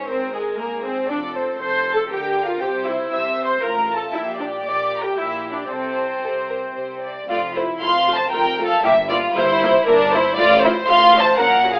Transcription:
0.07 0.53 G#1 medium
0.07 0.53 G#2 medium
0.07 0.33 C4 medium
0.07 0.59 A#4 medium
0.07 0.33 C5 medium
0.33 0.58 G#3 medium
0.33 0.41 G#4 medium
0.57 1.04 G#1 medium
0.57 1.04 G#2 medium
0.57 0.84 A#3 medium
0.57 1.09 G#4 soft
0.57 0.83 A#4 medium
0.83 1.09 C4 medium
0.83 1.09 C5 medium
1.08 1.55 F1 medium
1.08 1.55 F2 medium
1.08 1.17 D4 medium
1.08 1.59 A4 medium
1.08 1.35 D5 medium
1.35 1.60 C4 medium
1.35 1.61 C5 medium
1.61 2.05 F1 medium
1.61 2.05 F2 medium
1.61 2.10 A4 medium
1.61 1.94 C5 medium
1.61 1.94 C6 medium
1.93 2.01 A4 medium
1.93 2.00 A5 medium
2.10 2.56 D2 medium
2.10 2.55 D3 medium
2.10 2.44 G4 medium
2.10 2.61 A#4 medium
2.10 2.43 G5 medium
2.43 2.61 F4 medium
2.43 2.60 F5 medium
2.59 3.06 C2 medium
2.59 3.05 C3 medium
2.59 2.86 G4 medium
2.59 3.11 C5 medium
2.59 2.67 G5 medium
2.84 3.11 E4 medium
2.84 2.92 E5 medium
3.11 3.57 C2 medium
3.11 3.56 C3 medium
3.11 3.62 C5 medium
3.11 3.45 E5 medium
3.11 3.44 E6 medium
3.45 3.62 C5 medium
3.45 3.52 C6 medium
3.62 4.08 A1 medium
3.62 4.07 A2 medium
3.62 4.13 F4 medium
3.62 3.96 A#4 medium
3.62 3.96 A#5 medium
3.96 4.03 A4 medium
3.96 4.13 A5 medium
4.13 4.59 A#1 medium
4.13 4.58 A#2 medium
4.13 4.21 E4 medium
4.13 5.15 G4 medium
4.13 4.39 E5 medium
4.37 4.47 D4 medium
4.37 4.64 D5 medium
4.64 5.10 A#1 medium
4.64 5.10 A#2 medium
4.64 4.98 D5 medium
4.64 4.98 D6 medium
4.97 5.03 A#4 medium
4.97 5.02 A#5 medium
5.02 5.16 G4 medium
5.02 5.16 G5 medium
5.16 5.63 A#1 medium
5.16 5.63 A#2 medium
5.16 5.51 E4 medium
5.16 5.68 G4 soft
5.16 5.50 E5 medium
5.51 5.69 D4 medium
5.51 5.69 D5 soft
5.69 6.16 C2 medium
5.69 6.17 C3 medium
5.69 7.00 C4 medium
5.69 6.18 A4 soft
5.69 7.04 C5 medium
6.22 6.70 C2 medium
6.22 6.70 C3 medium
6.22 6.32 A4 medium
6.49 6.57 A#4 medium
6.76 7.23 C2 medium
6.76 7.23 C3 medium
6.76 7.02 C5 medium
7.03 7.29 D5 soft
7.29 7.75 F1 medium
7.29 7.75 F2 medium
7.29 7.37 A3 medium
7.29 7.37 F4 medium
7.29 7.54 F4 medium
7.29 7.38 D5 medium
7.54 7.62 A3 soft
7.54 7.82 E4 medium
7.54 7.63 F4 medium
7.54 7.63 C5 medium
7.81 8.27 F1 medium
7.81 8.26 F2 medium
7.81 7.89 A3 medium
7.81 7.89 F4 medium
7.81 8.16 F5 medium
7.81 8.15 C6 loud
8.07 8.15 A3 medium
8.07 8.15 F4 medium
8.15 8.32 C5 medium
8.15 8.32 A5 medium
8.31 8.78 F1 medium
8.31 8.78 F2 medium
8.31 8.41 A3 medium
8.31 8.40 F4 medium
8.31 8.66 A#4 medium
8.31 8.65 G5 medium
8.58 8.66 A3 medium
8.58 8.66 F4 medium
8.66 8.83 A4 medium
8.66 8.83 F5 medium
8.83 9.30 G1 medium
8.83 9.30 G2 medium
8.83 8.91 A#3 medium
8.83 8.91 E4 medium
8.83 8.92 G4 medium
8.83 9.09 E5 loud
9.09 9.18 A#3 medium
9.09 9.18 E4 medium
9.09 9.36 F4 medium
9.09 9.17 D5 loud
9.35 9.81 G1 loud
9.35 9.81 G2 medium
9.35 9.43 A#3 medium
9.35 9.43 E4 medium
9.35 9.88 E4 medium
9.35 9.86 C5 loud
9.61 9.69 A#3 medium
9.61 9.70 E4 medium
9.87 10.31 G1 medium
9.87 10.32 G2 medium
9.87 9.95 A#3 medium
9.87 10.13 D4 loud
9.87 9.95 E4 medium
9.87 10.12 A#4 loud
10.12 10.21 A#3 medium
10.12 10.21 E4 medium
10.12 10.38 E4 loud
10.12 10.37 C5 loud
10.37 10.82 A1 loud
10.37 10.81 A2 loud
10.37 10.46 A3 medium
10.37 10.45 F4 medium
10.37 10.63 F4 loud
10.37 10.62 D5 loud
10.61 10.71 A3 medium
10.61 10.71 E4 medium
10.61 10.71 F4 medium
10.61 10.87 C5 loud
10.86 11.32 A1 loud
10.86 11.32 A2 medium
10.86 10.96 A3 medium
10.86 10.96 F4 medium
10.86 11.21 F5 loud
10.86 11.20 C6 loud
11.13 11.21 A3 medium
11.13 11.21 F4 medium
11.20 11.38 C5 loud
11.20 11.38 A5 loud
11.38 11.80 A#1 medium
11.38 11.80 A#2 medium
11.38 11.47 C#4 medium
11.38 11.46 F#4 medium
11.38 11.72 A#4 loud
11.38 11.72 F#5 loud
11.63 11.71 C#4 medium
11.63 11.71 F#4 medium
11.73 11.80 G#4 medium
11.73 11.80 F5 medium

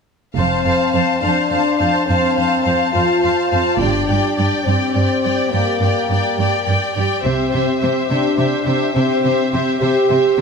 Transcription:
0.35 0.63 F1 soft
0.35 0.45 F2 soft
0.35 1.17 C4 soft
0.35 0.64 C5 soft
0.35 0.63 F5 soft
0.35 0.64 A5 soft
0.64 0.73 F2 soft
0.64 0.93 C5 soft
0.64 0.90 F5 soft
0.64 0.93 A5 soft
0.92 1.01 F2 soft
0.92 1.22 C5 soft
0.92 1.19 F5 soft
0.92 1.22 A5 soft
1.20 1.30 F2 soft
1.20 2.06 D4 medium
1.20 1.50 C5 soft
1.20 1.48 F5 soft
1.20 1.51 A5 soft
1.49 1.59 F2 soft
1.49 1.78 C5 soft
1.49 1.77 F5 soft
1.49 1.78 A5 soft
1.78 1.88 F2 soft
1.78 2.07 C5 soft
1.78 2.07 F5 soft
1.78 2.07 A5 soft
2.06 2.17 F2 soft
2.06 2.93 C4 medium
2.06 2.35 C5 soft
2.06 2.36 F5 soft
2.06 2.36 A5 soft
2.36 2.45 F2 soft
2.36 2.63 C5 soft
2.36 2.62 F5 soft
2.36 2.65 A5 soft
2.63 2.74 F2 soft
2.63 2.92 C5 soft
2.63 2.90 F5 soft
2.67 2.94 A5 soft
2.92 3.03 F2 soft
2.92 3.77 F4 medium
2.92 3.21 C5 soft
2.92 3.20 F5 soft
2.96 3.23 A5 soft
3.21 3.31 F2 soft
3.21 3.48 C5 soft
3.21 3.48 F5 soft
3.25 3.51 A5 soft
3.49 3.60 F2 soft
3.49 3.78 C5 soft
3.49 3.78 F5 soft
3.49 3.80 A5 soft
3.79 4.06 G1 soft
3.79 3.88 G2 soft
3.79 4.65 D4 medium
3.79 4.06 G4 soft
3.79 4.07 D5 soft
3.79 4.08 G5 soft
4.07 4.16 G2 soft
4.07 4.34 G4 soft
4.07 4.36 D5 soft
4.07 4.37 G5 soft
4.35 4.46 G2 soft
4.35 4.64 G4 soft
4.35 4.64 D5 soft
4.35 4.66 G5 soft
4.65 4.74 G2 soft
4.65 5.51 C4 medium
4.65 4.93 G4 soft
4.65 4.93 D5 soft
4.65 4.94 G5 soft
4.94 5.03 G2 soft
4.94 5.21 G4 soft
4.94 5.22 D5 soft
4.94 5.23 G5 soft
5.22 5.31 G2 soft
5.22 5.50 G4 soft
5.22 5.51 D5 soft
5.22 5.51 G5 soft
5.49 5.60 G2 soft
5.49 6.94 A#3 soft
5.49 5.79 G4 soft
5.49 5.80 G5 soft
5.54 5.81 D5 soft
5.80 5.88 G2 soft
5.80 6.08 G4 soft
5.80 6.09 D5 soft
5.80 6.09 G5 soft
6.09 6.17 G2 soft
6.09 6.36 G4 soft
6.09 6.37 D5 soft
6.09 6.38 G5 soft
6.37 6.46 G2 soft
6.37 6.65 G4 soft
6.37 6.65 D5 soft
6.37 6.65 G5 soft
6.66 6.75 G2 soft
6.66 6.93 G4 soft
6.66 6.94 D5 soft
6.66 6.94 G5 soft
6.95 7.04 G2 soft
6.95 7.22 G4 soft
6.95 7.23 D5 soft
6.95 7.23 G5 soft
7.22 7.50 C2 soft
7.22 7.32 C3 soft
7.22 8.04 C4 medium
7.22 7.51 G4 soft
7.22 7.50 C5 soft
7.22 7.50 E5 soft
7.51 7.61 C3 soft
7.51 7.80 G4 soft
7.51 7.80 C5 soft
7.51 7.78 E5 soft
7.79 7.90 C3 soft
7.79 8.08 G4 soft
7.79 8.08 C5 soft
7.79 8.08 E5 soft
8.09 8.18 C3 soft
8.09 8.93 D4 medium
8.09 8.36 G4 soft
8.09 8.37 C5 soft
8.09 8.36 E5 soft
8.37 8.46 C3 soft
8.37 8.64 G4 soft
8.37 8.65 C5 soft
8.37 8.66 E5 soft
8.65 8.74 C3 soft
8.65 8.93 G4 soft
8.65 8.94 C5 soft
8.65 8.94 E5 soft
8.94 9.03 C3 soft
8.94 9.79 C4 medium
8.94 9.21 G4 soft
8.94 9.22 C5 soft
8.94 9.23 E5 soft
9.23 9.32 C3 soft
9.23 9.50 G4 soft
9.23 9.50 C5 soft
9.23 9.52 E5 soft
9.51 9.61 C3 soft
9.51 9.79 G4 soft
9.51 9.79 C5 soft
9.51 9.79 E5 soft
9.80 9.89 C3 soft
9.80 10.41 G4 medium
9.80 10.08 G4 soft
9.80 10.08 C5 soft
9.80 10.08 E5 soft
10.09 10.18 C3 soft
10.09 10.36 G4 soft
10.09 10.37 C5 soft
10.09 10.37 E5 soft
10.37 10.41 C3 soft
10.37 10.41 G4 soft
10.37 10.41 C5 soft

